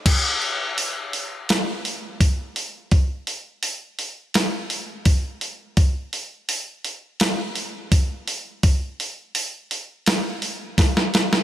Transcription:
\new DrumStaff \with { instrumentName = "Drums" } \drummode { \time 4/4 \tempo 4 = 84 <cymc hho bd>8 hho8 hho8 hho8 <hho sn>8 hho8 <hho bd>8 hho8 | <hho bd>8 hho8 hho8 hho8 <hho sn>8 hho8 <hho bd>8 hho8 | <hho bd>8 hho8 hho8 hho8 <hho sn>8 hho8 <hho bd>8 hho8 | <hho bd>8 hho8 hho8 hho8 <hho sn>8 hho8 <hho bd sn>16 sn16 <hho sn>16 sn16 | }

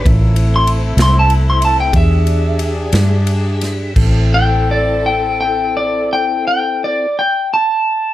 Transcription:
<<
  \new Staff \with { instrumentName = "Electric slide guitar" } { \time 12/8 \key a \minor \tempo 4. = 57 r8. c'''16 r8 c'''16 a''16 r16 c'''16 a''16 g''16 e''2. | r8 g''8 d''8 g''8 g''8 d''8 g''8 g''8 d''8 g''8 a''4 | }
  \new Staff \with { instrumentName = "Tonewheel organ" } { \time 12/8 \key a \minor <cis' f' bes'>8 <c' e' a'>2~ <c' e' a'>8 <d' g' gis'>2. | <c' e' a'>1. | }
  \new Staff \with { instrumentName = "Saxophone section" } { \time 12/8 \key a \minor <a c' e'>2. <d' gis'>2. | <c' e' a'>1. | }
  \new Staff \with { instrumentName = "Fingered electric bass" } { \clef bass \time 12/8 \key a \minor a,,4. c,4. e,4. g,4. | a,,1. | }
  \new DrumStaff \with { instrumentName = "Drums" } \drummode { \time 12/8 <bd cymr>8 cymr8 cymr8 <cymr sn>8 cymr8 cymr8 <bd cymr>8 cymr8 cymr8 <cymr sn>8 cymr8 <cymr sn>8 | <cymc bd>4. r4. r4. r4. | }
>>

